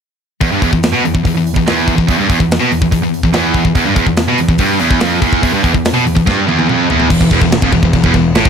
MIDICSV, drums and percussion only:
0, 0, Header, 1, 2, 480
1, 0, Start_track
1, 0, Key_signature, 1, "minor"
1, 0, Tempo, 417537
1, 481, Time_signature, 4, 2, 24, 8
1, 9765, End_track
2, 0, Start_track
2, 0, Title_t, "Drums"
2, 471, Note_on_c, 9, 46, 63
2, 473, Note_on_c, 9, 36, 99
2, 586, Note_off_c, 9, 46, 0
2, 588, Note_off_c, 9, 36, 0
2, 714, Note_on_c, 9, 36, 82
2, 716, Note_on_c, 9, 46, 60
2, 829, Note_off_c, 9, 36, 0
2, 831, Note_off_c, 9, 46, 0
2, 836, Note_on_c, 9, 36, 87
2, 951, Note_off_c, 9, 36, 0
2, 955, Note_on_c, 9, 46, 85
2, 963, Note_on_c, 9, 38, 118
2, 1070, Note_off_c, 9, 46, 0
2, 1078, Note_off_c, 9, 38, 0
2, 1208, Note_on_c, 9, 46, 52
2, 1318, Note_on_c, 9, 36, 88
2, 1323, Note_off_c, 9, 46, 0
2, 1433, Note_off_c, 9, 36, 0
2, 1438, Note_on_c, 9, 36, 89
2, 1448, Note_on_c, 9, 46, 77
2, 1553, Note_off_c, 9, 36, 0
2, 1563, Note_off_c, 9, 46, 0
2, 1685, Note_on_c, 9, 46, 53
2, 1796, Note_on_c, 9, 36, 90
2, 1800, Note_off_c, 9, 46, 0
2, 1911, Note_off_c, 9, 36, 0
2, 1920, Note_on_c, 9, 46, 71
2, 1928, Note_on_c, 9, 38, 110
2, 2035, Note_off_c, 9, 46, 0
2, 2043, Note_off_c, 9, 38, 0
2, 2158, Note_on_c, 9, 36, 80
2, 2159, Note_on_c, 9, 46, 53
2, 2273, Note_off_c, 9, 36, 0
2, 2274, Note_off_c, 9, 46, 0
2, 2278, Note_on_c, 9, 36, 86
2, 2393, Note_off_c, 9, 36, 0
2, 2397, Note_on_c, 9, 36, 88
2, 2399, Note_on_c, 9, 46, 71
2, 2512, Note_off_c, 9, 36, 0
2, 2514, Note_off_c, 9, 46, 0
2, 2640, Note_on_c, 9, 36, 94
2, 2647, Note_on_c, 9, 46, 57
2, 2755, Note_off_c, 9, 36, 0
2, 2760, Note_on_c, 9, 36, 89
2, 2762, Note_off_c, 9, 46, 0
2, 2875, Note_off_c, 9, 36, 0
2, 2890, Note_on_c, 9, 46, 75
2, 2898, Note_on_c, 9, 38, 125
2, 3005, Note_off_c, 9, 46, 0
2, 3013, Note_off_c, 9, 38, 0
2, 3124, Note_on_c, 9, 46, 57
2, 3239, Note_off_c, 9, 46, 0
2, 3239, Note_on_c, 9, 36, 84
2, 3354, Note_off_c, 9, 36, 0
2, 3359, Note_on_c, 9, 36, 93
2, 3364, Note_on_c, 9, 46, 68
2, 3474, Note_off_c, 9, 36, 0
2, 3479, Note_off_c, 9, 46, 0
2, 3608, Note_on_c, 9, 46, 49
2, 3717, Note_on_c, 9, 36, 77
2, 3723, Note_off_c, 9, 46, 0
2, 3832, Note_off_c, 9, 36, 0
2, 3833, Note_on_c, 9, 46, 77
2, 3841, Note_on_c, 9, 38, 107
2, 3948, Note_off_c, 9, 46, 0
2, 3956, Note_off_c, 9, 38, 0
2, 4068, Note_on_c, 9, 46, 49
2, 4075, Note_on_c, 9, 36, 72
2, 4183, Note_off_c, 9, 46, 0
2, 4189, Note_off_c, 9, 36, 0
2, 4194, Note_on_c, 9, 36, 83
2, 4309, Note_off_c, 9, 36, 0
2, 4313, Note_on_c, 9, 46, 64
2, 4315, Note_on_c, 9, 36, 84
2, 4428, Note_off_c, 9, 46, 0
2, 4430, Note_off_c, 9, 36, 0
2, 4552, Note_on_c, 9, 46, 54
2, 4556, Note_on_c, 9, 36, 91
2, 4667, Note_off_c, 9, 46, 0
2, 4671, Note_off_c, 9, 36, 0
2, 4673, Note_on_c, 9, 36, 77
2, 4788, Note_off_c, 9, 36, 0
2, 4790, Note_on_c, 9, 46, 79
2, 4798, Note_on_c, 9, 38, 119
2, 4905, Note_off_c, 9, 46, 0
2, 4913, Note_off_c, 9, 38, 0
2, 5034, Note_on_c, 9, 46, 56
2, 5149, Note_off_c, 9, 46, 0
2, 5156, Note_on_c, 9, 36, 86
2, 5268, Note_on_c, 9, 46, 81
2, 5271, Note_off_c, 9, 36, 0
2, 5276, Note_on_c, 9, 36, 83
2, 5383, Note_off_c, 9, 46, 0
2, 5390, Note_off_c, 9, 36, 0
2, 5511, Note_on_c, 9, 46, 54
2, 5626, Note_off_c, 9, 46, 0
2, 5640, Note_on_c, 9, 36, 89
2, 5754, Note_on_c, 9, 46, 79
2, 5755, Note_off_c, 9, 36, 0
2, 5762, Note_on_c, 9, 38, 104
2, 5869, Note_off_c, 9, 46, 0
2, 5877, Note_off_c, 9, 38, 0
2, 5997, Note_on_c, 9, 46, 57
2, 6001, Note_on_c, 9, 36, 82
2, 6112, Note_off_c, 9, 46, 0
2, 6116, Note_off_c, 9, 36, 0
2, 6123, Note_on_c, 9, 36, 87
2, 6238, Note_off_c, 9, 36, 0
2, 6243, Note_on_c, 9, 36, 85
2, 6243, Note_on_c, 9, 46, 81
2, 6358, Note_off_c, 9, 36, 0
2, 6358, Note_off_c, 9, 46, 0
2, 6483, Note_on_c, 9, 36, 89
2, 6485, Note_on_c, 9, 46, 57
2, 6598, Note_off_c, 9, 36, 0
2, 6600, Note_off_c, 9, 46, 0
2, 6604, Note_on_c, 9, 36, 75
2, 6719, Note_off_c, 9, 36, 0
2, 6726, Note_on_c, 9, 46, 85
2, 6734, Note_on_c, 9, 38, 124
2, 6841, Note_off_c, 9, 46, 0
2, 6849, Note_off_c, 9, 38, 0
2, 6974, Note_on_c, 9, 46, 51
2, 7088, Note_on_c, 9, 36, 86
2, 7089, Note_off_c, 9, 46, 0
2, 7203, Note_off_c, 9, 36, 0
2, 7211, Note_on_c, 9, 36, 96
2, 7225, Note_on_c, 9, 38, 54
2, 7326, Note_off_c, 9, 36, 0
2, 7340, Note_off_c, 9, 38, 0
2, 7458, Note_on_c, 9, 48, 68
2, 7573, Note_off_c, 9, 48, 0
2, 7575, Note_on_c, 9, 48, 69
2, 7690, Note_off_c, 9, 48, 0
2, 7695, Note_on_c, 9, 47, 76
2, 7810, Note_off_c, 9, 47, 0
2, 7933, Note_on_c, 9, 43, 88
2, 8044, Note_off_c, 9, 43, 0
2, 8044, Note_on_c, 9, 43, 89
2, 8159, Note_off_c, 9, 43, 0
2, 8166, Note_on_c, 9, 36, 100
2, 8174, Note_on_c, 9, 49, 127
2, 8174, Note_on_c, 9, 57, 80
2, 8281, Note_off_c, 9, 36, 0
2, 8286, Note_on_c, 9, 36, 95
2, 8289, Note_off_c, 9, 49, 0
2, 8289, Note_off_c, 9, 57, 0
2, 8401, Note_off_c, 9, 36, 0
2, 8404, Note_on_c, 9, 36, 89
2, 8410, Note_on_c, 9, 57, 67
2, 8519, Note_off_c, 9, 36, 0
2, 8524, Note_on_c, 9, 36, 99
2, 8525, Note_off_c, 9, 57, 0
2, 8639, Note_off_c, 9, 36, 0
2, 8642, Note_on_c, 9, 57, 93
2, 8650, Note_on_c, 9, 38, 127
2, 8757, Note_off_c, 9, 57, 0
2, 8763, Note_on_c, 9, 36, 121
2, 8765, Note_off_c, 9, 38, 0
2, 8878, Note_off_c, 9, 36, 0
2, 8881, Note_on_c, 9, 36, 89
2, 8883, Note_on_c, 9, 57, 69
2, 8996, Note_off_c, 9, 36, 0
2, 8998, Note_off_c, 9, 57, 0
2, 8999, Note_on_c, 9, 36, 91
2, 9114, Note_off_c, 9, 36, 0
2, 9120, Note_on_c, 9, 36, 88
2, 9122, Note_on_c, 9, 57, 88
2, 9235, Note_off_c, 9, 36, 0
2, 9237, Note_off_c, 9, 57, 0
2, 9240, Note_on_c, 9, 36, 87
2, 9355, Note_off_c, 9, 36, 0
2, 9359, Note_on_c, 9, 36, 83
2, 9361, Note_on_c, 9, 57, 62
2, 9474, Note_off_c, 9, 36, 0
2, 9476, Note_off_c, 9, 57, 0
2, 9599, Note_on_c, 9, 57, 96
2, 9607, Note_on_c, 9, 38, 107
2, 9714, Note_off_c, 9, 57, 0
2, 9718, Note_on_c, 9, 36, 96
2, 9722, Note_off_c, 9, 38, 0
2, 9765, Note_off_c, 9, 36, 0
2, 9765, End_track
0, 0, End_of_file